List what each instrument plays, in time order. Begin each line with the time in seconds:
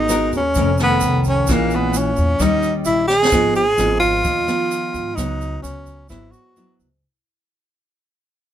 Already playing: upright bass G#1, nylon-string guitar G#3, tenor saxophone D#4
0.09 nylon-string guitar B3 F#4 A#4, cross-stick, closed hi-hat, shaker
0.32 upright bass D#2, kick, closed hi-hat, shaker
0.37 tenor saxophone C#4
0.55 upright bass F1, nylon-string guitar F2 D#3 A3 C#4, kick, closed hi-hat, shaker
0.78 nylon-string guitar D#3 A3 C#4, cross-stick, closed hi-hat, shaker
0.83 tenor saxophone B3
1.00 upright bass C2, closed hi-hat, shaker
1.24 kick, closed hi-hat, shaker
1.29 tenor saxophone C#4
1.47 upright bass A#1, nylon-string guitar A#2 E3 G#3 C#4, kick, cross-stick, closed hi-hat, shaker
1.52 tenor saxophone A#3
1.70 closed hi-hat, shaker
1.75 tenor saxophone B3
1.94 tenor saxophone C#4, closed hi-hat, shaker
2.16 upright bass E2, kick, closed hi-hat, shaker
2.39 upright bass D#2, nylon-string guitar D#3 G3 C#4, tenor saxophone D#4, kick, cross-stick, closed hi-hat, shaker
2.63 closed hi-hat, shaker
2.85 upright bass A#1, tenor saxophone E4, closed hi-hat, shaker
3.08 tenor saxophone G#4, snare, shaker
3.25 snare
3.31 upright bass G#1, nylon-string guitar G#2 F3 B3 D#4, kick, cross-stick, closed hi-hat, shaker
3.55 tenor saxophone G#4, closed hi-hat, shaker
3.77 upright bass G#1, nylon-string guitar F3 B3 D#4, cross-stick, closed hi-hat, shaker
4.00 tenor saxophone F4, kick, closed hi-hat, shaker
4.24 upright bass D#2, nylon-string guitar D#3, kick, closed hi-hat, shaker
4.47 nylon-string guitar F3 B3 D#4, cross-stick, closed hi-hat, shaker
4.71 closed hi-hat, shaker
4.94 upright bass G#2, kick, closed hi-hat, shaker
5.15 upright bass C#2, nylon-string guitar C#3 F#3 B3, tenor saxophone D#4, kick, cross-stick, closed hi-hat, shaker
5.41 closed hi-hat, shaker
5.62 upright bass C#2, tenor saxophone C#4, closed hi-hat, shaker
5.86 kick, closed hi-hat, shaker
6.09 upright bass G#1, nylon-string guitar G#2 F#3 B3 E4, tenor saxophone E4, kick, cross-stick, closed hi-hat, shaker
6.31 tenor saxophone F#4, closed hi-hat, shaker
6.56 nylon-string guitar F#3 B3 E4, closed hi-hat, shaker
6.79 upright bass C#2, kick, shaker